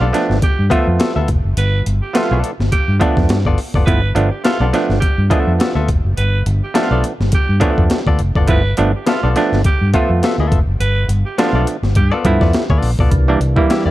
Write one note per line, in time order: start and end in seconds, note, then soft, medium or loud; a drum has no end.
0.00 0.11 B1 medium
0.00 0.14 B3 medium
0.00 0.06 D4 medium
0.00 0.13 F4 medium
0.00 0.13 A4 medium
0.00 0.13 D5 medium
0.13 0.38 F3 medium
0.13 0.38 A3 medium
0.13 0.38 B3 medium
0.13 0.39 D4 medium
0.13 snare soft
0.13 closed hi-hat medium
0.30 0.40 G1 medium
0.30 snare soft
0.42 0.66 G4 loud
0.42 muted fingered electric bass stroke soft
0.42 kick medium
0.42 closed hi-hat medium
0.59 0.69 G2 medium
0.70 1.20 F3 medium
0.70 1.21 A3 medium
0.70 0.86 B3 medium
0.70 1.21 B3 medium
0.70 0.86 F4 medium
0.70 1.21 F4 loud
0.70 0.86 A4 loud
0.70 0.87 E5 loud
0.70 kick medium
0.70 closed hi-hat medium
0.87 0.98 F2 medium
0.99 1.11 B3 medium
0.99 1.11 F4 medium
0.99 1.12 A4 medium
0.99 1.12 E5 medium
0.99 snare loud
0.99 closed hi-hat medium
1.16 1.26 D2 medium
1.16 1.29 B3 medium
1.16 1.29 F4 medium
1.16 1.28 A4 medium
1.16 1.28 E5 medium
1.28 1.42 F1 medium
1.28 kick medium
1.28 closed hi-hat medium
1.45 1.55 F#1 medium
1.57 1.81 G1 loud
1.57 1.80 B4 loud
1.57 closed hi-hat loud
1.86 1.99 G1 loud
1.86 closed hi-hat medium
2.02 2.16 G4 medium
2.13 2.51 F3 medium
2.13 2.52 A3 medium
2.13 2.52 B3 medium
2.13 2.27 B3 medium
2.13 2.52 F4 medium
2.13 2.38 F4 loud
2.13 2.27 F4 medium
2.13 2.28 A4 medium
2.13 2.28 E5 medium
2.13 snare loud
2.13 closed hi-hat medium
2.31 2.41 B1 medium
2.31 2.51 B3 medium
2.31 2.50 F4 medium
2.31 2.50 A4 medium
2.31 2.50 D5 medium
2.44 closed hi-hat medium
2.60 2.70 G1 medium
2.60 snare soft
2.72 2.95 G4 loud
2.72 kick medium
2.72 closed hi-hat medium
2.88 2.99 G2 medium
3.00 3.38 F3 medium
3.00 3.38 A3 medium
3.00 3.38 B3 medium
3.00 3.16 B3 medium
3.00 3.38 D4 loud
3.00 3.17 F4 medium
3.00 3.17 A4 medium
3.00 3.17 D5 loud
3.00 kick medium
3.00 closed hi-hat medium
3.17 3.30 F2 medium
3.17 kick loud
3.17 snare soft
3.29 3.43 G2 loud
3.29 snare loud
3.29 closed hi-hat medium
3.45 3.56 G1 medium
3.45 3.59 B3 medium
3.45 3.59 F4 medium
3.45 3.59 A4 medium
3.45 3.58 D5 medium
3.45 kick medium
3.58 open hi-hat medium
3.74 3.85 F#1 medium
3.74 3.85 B3 medium
3.74 3.85 F4 medium
3.74 3.85 A4 medium
3.74 3.84 D5 medium
3.74 kick loud
3.86 4.11 G1 medium
3.86 4.00 F3 medium
3.86 4.01 A3 medium
3.86 4.01 B3 medium
3.86 4.01 E4 medium
3.86 4.09 B4 loud
3.86 kick loud
3.86 closed hi-hat medium
4.15 4.29 G1 loud
4.15 4.29 F3 medium
4.15 4.29 A3 medium
4.15 4.29 B3 medium
4.15 4.30 D4 loud
4.15 closed hi-hat medium
4.31 4.41 G4 medium
4.44 4.51 B3 medium
4.44 4.57 B3 medium
4.44 4.52 E4 medium
4.44 4.67 F4 loud
4.44 4.57 F4 medium
4.44 4.57 A4 medium
4.44 4.58 E5 medium
4.44 snare loud
4.44 closed hi-hat medium
4.60 4.71 B1 medium
4.60 4.66 B3 medium
4.60 4.74 B3 medium
4.60 4.66 D4 loud
4.60 4.74 F4 medium
4.60 4.73 A4 medium
4.60 4.73 D5 medium
4.73 4.98 F3 medium
4.73 4.98 A3 medium
4.73 4.99 B3 medium
4.73 4.99 D4 medium
4.73 snare soft
4.73 closed hi-hat medium
4.89 5.00 G1 medium
4.89 snare soft
5.00 5.24 G4 loud
5.00 muted fingered electric bass stroke soft
5.00 kick medium
5.00 closed hi-hat medium
5.18 5.29 G2 medium
5.30 5.81 F3 medium
5.30 5.81 A3 medium
5.30 5.52 B3 medium
5.30 5.81 B3 medium
5.30 5.81 D4 medium
5.30 5.52 F4 medium
5.30 5.52 A4 medium
5.30 5.53 E5 loud
5.30 kick medium
5.30 closed hi-hat medium
5.47 5.58 F2 medium
5.59 5.72 B3 medium
5.59 5.72 F4 medium
5.59 5.72 A4 medium
5.59 5.72 E5 medium
5.59 snare loud
5.59 closed hi-hat medium
5.75 5.86 D2 medium
5.75 5.89 B3 medium
5.75 5.88 F4 medium
5.75 5.88 A4 medium
5.75 5.88 E5 medium
5.89 6.02 F1 medium
5.89 kick medium
5.89 closed hi-hat medium
6.05 6.15 F#1 medium
6.18 6.42 G1 medium
6.18 6.41 B4 loud
6.18 closed hi-hat loud
6.46 6.60 G1 loud
6.46 closed hi-hat medium
6.64 6.78 G4 medium
6.74 7.13 F3 medium
6.74 7.13 A3 medium
6.74 6.87 B3 medium
6.74 7.13 B3 medium
6.74 7.13 D4 medium
6.74 6.87 F4 medium
6.74 6.99 F4 loud
6.74 6.88 A4 medium
6.74 6.88 E5 medium
6.74 snare loud
6.74 closed hi-hat medium
6.91 7.02 B1 medium
6.91 7.05 B3 medium
6.91 7.04 F4 medium
6.91 7.04 A4 medium
6.91 7.04 D5 medium
7.04 closed hi-hat medium
7.20 7.31 G1 medium
7.20 snare soft
7.32 7.57 G4 loud
7.32 muted fingered electric bass stroke soft
7.32 kick medium
7.32 closed hi-hat medium
7.49 7.60 G2 medium
7.60 7.99 F3 loud
7.60 7.99 A3 medium
7.60 7.99 B3 medium
7.60 7.83 B3 medium
7.60 8.00 D4 loud
7.60 7.83 F4 medium
7.60 7.84 A4 medium
7.60 7.84 D5 loud
7.60 kick medium
7.60 closed hi-hat medium
7.78 7.89 F2 medium
7.78 kick medium
7.90 snare loud
7.90 closed hi-hat medium
8.06 8.17 D2 medium
8.06 8.20 B3 medium
8.06 8.20 F4 medium
8.06 8.20 A4 medium
8.06 8.20 D5 medium
8.06 kick medium
8.19 8.33 F1 medium
8.19 closed hi-hat medium
8.35 8.46 F#1 medium
8.35 8.47 B3 medium
8.35 8.47 F4 medium
8.35 8.46 A4 medium
8.35 8.46 D5 medium
8.35 kick loud
8.47 8.73 G1 medium
8.47 8.62 F3 medium
8.47 8.62 A3 medium
8.47 8.62 B3 medium
8.47 8.63 E4 medium
8.47 8.73 B4 loud
8.47 kick loud
8.47 closed hi-hat loud
8.77 8.92 G1 loud
8.77 8.91 F3 medium
8.77 8.92 A3 medium
8.77 8.92 B3 medium
8.77 8.92 D4 loud
8.77 closed hi-hat medium
8.96 9.05 G4 medium
9.06 9.13 B3 medium
9.06 9.19 B3 medium
9.06 9.14 D4 loud
9.06 9.30 F4 loud
9.06 9.20 F4 medium
9.06 9.20 A4 medium
9.06 9.20 E5 medium
9.06 snare loud
9.06 closed hi-hat medium
9.23 9.34 B1 medium
9.23 9.29 B3 medium
9.23 9.36 B3 medium
9.23 9.29 D4 medium
9.23 9.36 F4 medium
9.23 9.36 A4 medium
9.23 9.35 D5 medium
9.36 9.61 F3 medium
9.36 9.61 A3 medium
9.36 9.61 B3 medium
9.36 9.62 D4 loud
9.36 snare soft
9.36 closed hi-hat medium
9.52 9.63 G1 medium
9.52 snare soft
9.64 9.89 G4 loud
9.64 kick medium
9.64 closed hi-hat medium
9.81 9.92 G2 medium
9.94 10.44 F3 medium
9.94 10.44 A3 medium
9.94 10.09 B3 medium
9.94 10.44 B3 medium
9.94 10.10 F4 medium
9.94 10.45 F4 loud
9.94 10.10 A4 medium
9.94 10.10 E5 medium
9.94 kick medium
9.94 closed hi-hat medium
10.10 10.20 F2 medium
10.23 10.35 B3 medium
10.23 10.35 F4 medium
10.23 10.36 A4 medium
10.23 10.36 E5 medium
10.23 snare loud
10.23 closed hi-hat medium
10.38 10.49 D2 medium
10.38 10.59 B3 medium
10.38 10.59 F4 medium
10.38 10.59 A4 medium
10.38 10.59 E5 medium
10.52 10.65 F1 medium
10.52 kick medium
10.52 closed hi-hat medium
10.67 10.78 F#1 medium
10.80 11.04 G1 medium
10.80 11.04 B4 loud
10.80 closed hi-hat medium
11.08 11.22 G1 loud
11.08 closed hi-hat medium
11.26 11.40 G4 medium
11.38 11.76 F3 medium
11.38 11.76 A3 medium
11.38 11.51 B3 medium
11.38 11.77 B3 medium
11.38 11.77 D4 medium
11.38 11.62 F4 loud
11.38 11.51 F4 medium
11.38 11.51 A4 medium
11.38 11.52 E5 medium
11.38 snare medium
11.38 closed hi-hat medium
11.53 11.64 B1 loud
11.53 11.68 B3 medium
11.53 11.68 F4 medium
11.53 11.67 A4 medium
11.53 11.67 D5 medium
11.67 closed hi-hat medium
11.83 11.94 G1 medium
11.83 snare soft
11.95 12.10 G2 loud
11.95 12.20 G4 loud
11.95 kick medium
11.95 closed hi-hat medium
12.12 12.25 B3 medium
12.12 12.25 F4 medium
12.12 12.25 A4 medium
12.12 12.24 D5 medium
12.25 12.39 G2 loud
12.25 12.63 F3 medium
12.25 12.63 A3 medium
12.25 12.64 B3 medium
12.25 12.64 E4 loud
12.25 kick medium
12.25 closed hi-hat medium
12.41 12.52 F2 loud
12.41 12.52 B3 soft
12.41 12.52 F4 medium
12.41 12.52 A4 medium
12.41 12.51 D5 medium
12.41 kick medium
12.41 snare soft
12.53 snare loud
12.53 closed hi-hat medium
12.70 12.81 D2 medium
12.70 12.90 B3 medium
12.70 12.90 F4 medium
12.70 12.90 A4 medium
12.70 12.89 D5 medium
12.70 kick medium
12.82 12.96 A#1 medium
12.82 open hi-hat medium
12.99 13.10 B1 medium
12.99 13.10 B3 medium
12.99 13.10 F4 medium
12.99 13.10 A4 medium
12.99 13.09 D5 medium
12.99 kick loud
13.11 13.36 C2 medium
13.11 13.91 E3 medium
13.11 13.91 G3 medium
13.11 13.91 A#3 medium
13.11 13.91 D4 medium
13.11 kick loud
13.11 closed hi-hat loud
13.28 13.39 E3 medium
13.28 13.39 G3 medium
13.28 13.40 A#3 medium
13.28 13.40 D4 loud
13.40 13.54 C2 medium
13.40 closed hi-hat medium
13.56 13.91 E3 medium
13.56 13.91 G3 medium
13.56 13.91 A#3 medium
13.56 13.91 E4 medium
13.56 kick loud
13.70 13.82 A#3 medium
13.70 13.82 E4 medium
13.70 13.83 G4 medium
13.70 13.83 E5 medium
13.70 snare loud
13.70 closed hi-hat medium
13.85 13.91 E2 medium
13.85 13.91 A#3 medium
13.85 13.91 E4 medium
13.85 13.91 G4 medium
13.85 13.91 D5 medium